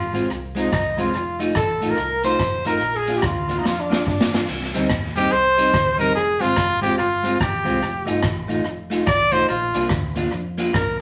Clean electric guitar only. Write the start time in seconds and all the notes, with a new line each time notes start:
0.13 G#3 C4 F4
0.55 G#3 C4 F4
0.71 muted clean electric guitar stroke
0.98 G#3 C4 F4
1.39 A3 D#4 F4
1.81 A3 D#4 F4
2.24 A3 D#4 F4
2.40 muted clean electric guitar stroke
2.65 A3 D#4 F4
3.08 A#3 D4 F4
3.48 A#3 D4 F4
3.90 A#3 D4 F4
4.05 muted clean electric guitar stroke
4.32 A#3 D4 F4
4.74 G3 C4 D#4
5.16 G3 C4 D#4
5.57 G3 C4 D#4
5.73 muted clean electric guitar stroke
5.97 G3 C4 D#4
6.40 G#3 C4 F4
6.81 G#3 C4 F4
7.23 G#3 C4 F4
7.39 muted clean electric guitar stroke
7.64 G#3 C4 F4
8.05 A3 D#4 F4
8.48 A3 D#4 F4
8.90 A3 D#4 F4
9.06 muted clean electric guitar stroke
9.31 A3 D#4 F4
9.75 A#3 D4 F4
10.16 A#3 D4 F4
10.58 A#3 D4 F4
10.73 muted clean electric guitar stroke